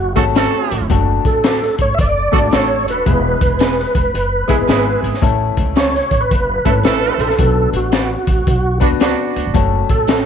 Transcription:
Already playing: F#1 F#4
0.16 G#1 A3 C#4 F#4 G#4 A4, kick, closed hi-hat
0.24 A4
0.35 C#4 F#4 A4 C#5, snare, closed hi-hat
0.71 A1, closed hi-hat
0.81 F1
0.89 F#1 A3 D4 F#4 A4, kick, closed hi-hat
1.25 A1 A4, kick, closed hi-hat
1.44 D4 F#4 A4 D5, snare, closed hi-hat
1.63 snare
1.78 G#1 C#5, kick, closed hi-hat
1.94 E5
1.99 F#1 D5, kick, closed hi-hat
2.32 G#1 A3 D4 F#4 A4, kick, closed hi-hat
2.52 A1 D4 F#4 A4 C#5 D5, snare, closed hi-hat
2.88 D#1 B4, closed hi-hat
3.06 E1 G#3 B3 E4 G#4, kick, closed hi-hat
3.41 E1, kick, closed hi-hat
3.59 B3 E4 G#4 B4, snare, closed hi-hat
3.79 snare
3.95 E1, kick, closed hi-hat
4.14 F#1, closed hi-hat
4.48 G#3 B3 E4 G#4, muted upright bass stroke, kick, closed hi-hat
4.58 G#1
4.68 G#1 B3 E4 G#4 B4, snare, closed hi-hat
5.02 G#1, closed hi-hat
5.14 snare
5.21 A1 A3 C#4 E4 A4, kick, closed hi-hat
5.57 C#2, kick, closed hi-hat
5.76 C#4 E4 A4 C#5, snare, closed hi-hat
5.95 snare
6.11 A1, kick, closed hi-hat
6.21 B4
6.31 F#1, kick, closed hi-hat
6.65 G#1 A3 C#4 E4 A4 B4, kick, closed hi-hat
6.84 A1 C#4 E4 A4 C#5, snare, closed hi-hat
7.18 A#1 A4, closed hi-hat
7.30 snare
7.38 B1 B3 D4 F#4 B4, kick, closed hi-hat
7.73 A1 F#4, closed hi-hat
7.92 D4 F#4 B4 D5, snare, closed hi-hat
8.27 A1, kick, closed hi-hat
8.47 B1, kick, closed hi-hat
8.80 B3 D4 F#4 B4, kick, closed hi-hat
8.92 C#2
9.00 B3 D4 F#4 B4 D5, snare, closed hi-hat
9.36 D2, closed hi-hat
9.46 F1
9.54 F#1 A3 C#4 F#4 A4, kick, closed hi-hat
9.89 A1 A4, kick, closed hi-hat
10.08 C#4 F#4 A4 C#5, snare, closed hi-hat

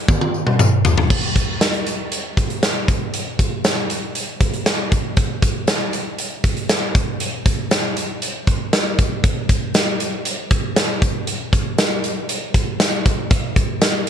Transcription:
0.08 kick, high tom, tambourine
0.21 high tom
0.34 tambourine
0.47 mid tom
0.59 mid tom, tambourine
0.85 floor tom, tambourine
0.98 floor tom
1.10 kick, crash, tambourine
1.36 kick, closed hi-hat, tambourine
1.61 snare, closed hi-hat, tambourine
1.74 closed hi-hat
1.87 closed hi-hat, tambourine
2.12 closed hi-hat, tambourine
2.37 kick, closed hi-hat, tambourine
2.50 closed hi-hat
2.63 snare, closed hi-hat, tambourine
2.88 kick, closed hi-hat, tambourine
3.14 closed hi-hat
3.39 kick, closed hi-hat, tambourine
3.64 snare, closed hi-hat, tambourine
3.90 closed hi-hat, tambourine
4.15 closed hi-hat, tambourine
4.41 kick, closed hi-hat, tambourine
4.53 closed hi-hat
4.66 snare, closed hi-hat, tambourine
4.92 kick, closed hi-hat, tambourine
5.16 kick, closed hi-hat, tambourine
5.42 kick, closed hi-hat, tambourine
5.67 snare, closed hi-hat, tambourine
5.93 closed hi-hat, tambourine
6.19 closed hi-hat, tambourine
6.44 kick, closed hi-hat, tambourine
6.57 closed hi-hat
6.69 snare, closed hi-hat, tambourine
6.95 kick, closed hi-hat, tambourine
7.20 closed hi-hat, tambourine
7.46 kick, closed hi-hat, tambourine
7.71 snare, closed hi-hat, tambourine
7.97 closed hi-hat, tambourine
8.22 closed hi-hat, tambourine
8.47 kick, closed hi-hat
8.73 snare, closed hi-hat, tambourine
8.98 kick, closed hi-hat, tambourine
9.24 kick, closed hi-hat
9.49 kick, closed hi-hat, tambourine
9.74 snare, closed hi-hat, tambourine
10.00 closed hi-hat, tambourine
10.25 closed hi-hat, tambourine
10.51 kick, closed hi-hat, tambourine
10.76 snare, closed hi-hat, tambourine
11.02 kick, closed hi-hat, tambourine
11.27 closed hi-hat
11.53 kick, closed hi-hat, tambourine
11.78 snare, closed hi-hat, tambourine
12.04 closed hi-hat, tambourine
12.29 closed hi-hat, tambourine
12.54 kick, closed hi-hat, tambourine
12.80 snare, closed hi-hat, tambourine
13.06 kick, closed hi-hat, tambourine
13.30 kick, closed hi-hat, tambourine
13.56 kick, closed hi-hat, tambourine
13.81 snare, closed hi-hat, tambourine

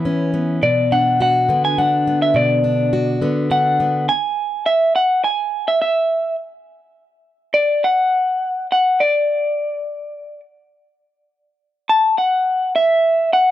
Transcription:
Already playing: E3 B3 E4 B4
0.05 C#4
0.34 B3
0.62 B2 D5
0.92 D4 F#5
1.20 F#4 F#5
1.49 D3 B3
1.65 G#5
1.78 D4 F#5
2.07 B3
2.22 E5
2.34 B2 D5
2.64 D4
2.93 F#4
3.21 D3 B3
3.51 D4 F#5
3.80 B3
4.09 G#5
4.66 E5
4.96 F#5
5.24 G#5
5.68 E5
5.82 E5
7.54 D5
7.84 F#5
8.72 F#5
9.00 D5
11.89 A5
12.18 F#5
12.76 E5
13.33 F#5

